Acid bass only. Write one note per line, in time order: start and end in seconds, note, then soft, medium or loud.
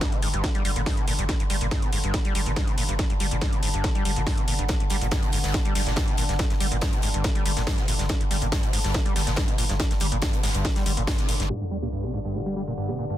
0.01 0.14 G2 medium
0.12 0.21 C3 medium
0.22 0.28 G#2 medium
0.33 0.45 G2 medium
0.44 0.50 A#2 medium
0.55 0.63 G3 medium
0.65 0.71 G3 medium
0.76 0.82 A#2 medium
0.86 0.99 G2 medium
0.97 1.06 C3 medium
1.07 1.14 A#2 medium
1.19 1.24 G2 medium
1.29 1.35 G2 medium
1.40 1.43 G2 medium
1.50 1.56 G3 medium
1.61 1.67 A#2 medium
1.71 1.84 G2 medium
1.82 1.91 C3 medium
1.93 1.99 G#2 medium
2.04 2.15 G2 medium
2.14 2.20 A#2 medium
2.25 2.33 G3 medium
2.35 2.41 G3 medium
2.46 2.52 A#2 medium
2.56 2.69 G2 medium
2.67 2.76 C3 medium
2.78 2.84 A#2 medium
2.89 2.94 G2 medium
2.99 3.05 G2 medium
3.10 3.13 G2 medium
3.20 3.26 G3 medium
3.31 3.37 A#2 medium
3.42 3.54 G2 medium
3.53 3.61 C3 medium
3.63 3.69 G#2 medium
3.74 3.86 G2 medium
3.84 3.90 A#2 medium
3.95 4.04 G3 medium
4.05 4.11 G3 medium
4.16 4.22 A#2 medium
4.27 4.39 G2 medium
4.38 4.46 C3 medium
4.48 4.54 A#2 medium
4.59 4.64 G2 medium
4.69 4.75 G2 medium
4.80 4.84 G2 medium
4.90 4.96 G3 medium
5.01 5.07 A#2 medium
5.11 5.24 G2 medium
5.23 5.31 C3 medium
5.33 5.39 G#2 medium
5.44 5.56 G2 medium
5.54 5.60 A#2 medium
5.65 5.74 G3 medium
5.75 5.82 G3 medium
5.86 5.92 A#2 medium
5.97 6.09 G2 medium
6.08 6.16 C3 medium
6.18 6.24 A#2 medium
6.29 6.35 G2 medium
6.39 6.45 G2 medium
6.50 6.54 G2 medium
6.60 6.67 G3 medium
6.72 6.77 A#2 medium
6.82 6.94 G2 medium
6.93 7.01 C3 medium
7.03 7.09 G#2 medium
7.14 7.26 G2 medium
7.24 7.31 A#2 medium
7.35 7.44 G3 medium
7.46 7.52 G3 medium
7.57 7.62 A#2 medium
7.67 7.79 G2 medium
7.78 7.86 C3 medium
7.88 7.94 A#2 medium
7.99 8.05 G2 medium
8.09 8.16 G2 medium
8.21 8.24 G2 medium
8.31 8.37 G3 medium
8.42 8.47 A#2 medium
8.52 8.64 G2 medium
8.63 8.71 C3 medium
8.73 8.79 G#2 medium
8.84 8.96 G2 medium
8.94 9.01 A#2 medium
9.05 9.14 G3 medium
9.16 9.22 G3 medium
9.27 9.32 A#2 medium
9.37 9.50 G2 medium
9.48 9.57 C3 medium
9.58 9.64 A#2 medium
9.69 9.75 G2 medium
9.80 9.86 G2 medium
9.91 9.94 G2 medium
10.01 10.07 G3 medium
10.12 10.18 A#2 medium
10.22 10.35 G2 medium
10.33 10.42 C3 medium
10.43 10.50 G#2 medium
10.54 10.66 G2 medium
10.65 10.71 A#2 medium
10.76 10.84 G3 medium
10.86 10.92 G3 medium
10.97 11.03 A#2 medium
11.07 11.20 G2 medium
11.18 11.27 C3 medium
11.29 11.35 A#2 medium
11.40 11.45 G2 medium
11.50 11.56 G2 medium
11.61 11.64 G2 medium
11.71 11.77 G3 medium
11.82 11.88 A#2 medium
11.92 12.05 G2 medium
12.04 12.12 C3 medium
12.14 12.20 G#2 medium
12.25 12.36 G2 medium
12.35 12.41 A#2 medium
12.46 12.55 G3 medium
12.56 12.62 G3 medium
12.67 12.73 A#2 medium
12.78 12.90 G2 medium
12.89 12.97 C3 medium
12.99 13.05 A#2 medium
13.10 13.16 G2 medium